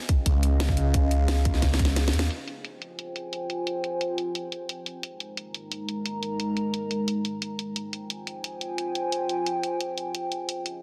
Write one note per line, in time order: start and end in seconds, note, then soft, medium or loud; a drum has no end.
0.00 2.28 C#4 medium
0.00 2.28 G#4 medium
0.00 2.28 D#5 medium
0.00 2.28 F5 medium
0.09 kick loud
0.09 closed hi-hat medium
0.26 0.76 C#2 loud
0.26 kick medium
0.26 closed hi-hat medium
0.43 closed hi-hat medium
0.60 snare loud
0.60 closed hi-hat medium
0.69 kick medium
0.77 1.61 C#2 medium
0.77 closed hi-hat medium
0.94 kick loud
0.94 closed hi-hat loud
1.11 closed hi-hat medium
1.28 snare loud
1.28 closed hi-hat medium
1.45 kick loud
1.45 closed hi-hat medium
1.54 snare soft
1.62 2.12 C#2 loud
1.62 kick medium
1.62 snare medium
1.62 closed hi-hat loud
1.74 snare medium
1.79 kick loud
1.79 closed hi-hat medium
1.85 snare medium
1.96 snare medium
1.96 closed hi-hat loud
2.08 snare loud
2.13 2.29 D#2 loud
2.13 closed hi-hat medium
2.19 snare loud
2.31 5.01 F4 medium
2.31 5.01 C5 medium
2.31 5.01 G5 medium
2.31 5.01 G#5 medium
2.31 closed hi-hat loud
2.48 closed hi-hat medium
2.65 closed hi-hat medium
2.82 closed hi-hat medium
2.99 closed hi-hat medium
3.16 closed hi-hat medium
3.33 closed hi-hat medium
3.50 closed hi-hat medium
3.67 closed hi-hat medium
3.84 closed hi-hat medium
4.01 closed hi-hat medium
4.18 closed hi-hat medium
4.35 closed hi-hat medium
4.52 closed hi-hat medium
4.69 closed hi-hat medium
4.86 closed hi-hat medium
5.03 7.73 G#3 medium
5.03 7.73 D#4 medium
5.03 7.73 A#4 medium
5.03 7.73 A#5 medium
5.03 closed hi-hat medium
5.20 closed hi-hat medium
5.37 closed hi-hat medium
5.54 closed hi-hat medium
5.72 closed hi-hat medium
5.89 closed hi-hat medium
6.06 closed hi-hat medium
6.23 closed hi-hat medium
6.40 closed hi-hat medium
6.57 closed hi-hat medium
6.74 closed hi-hat medium
6.91 closed hi-hat medium
7.08 closed hi-hat medium
7.25 closed hi-hat medium
7.42 closed hi-hat medium
7.59 closed hi-hat medium
7.76 10.46 F4 medium
7.76 10.46 C5 medium
7.76 10.46 G5 medium
7.76 10.46 G#5 medium
7.76 closed hi-hat medium
7.93 closed hi-hat medium
8.10 closed hi-hat medium
8.27 closed hi-hat medium
8.44 closed hi-hat medium
8.61 closed hi-hat medium
8.78 closed hi-hat medium
8.95 closed hi-hat medium
9.12 closed hi-hat medium
9.29 closed hi-hat medium
9.46 closed hi-hat medium
9.63 closed hi-hat medium
9.81 closed hi-hat medium
9.98 closed hi-hat medium
10.15 closed hi-hat medium
10.32 closed hi-hat medium
10.49 10.82 C#4 medium
10.49 10.82 G#4 medium
10.49 10.82 D#5 medium
10.49 10.82 F5 medium
10.49 closed hi-hat loud
10.66 closed hi-hat medium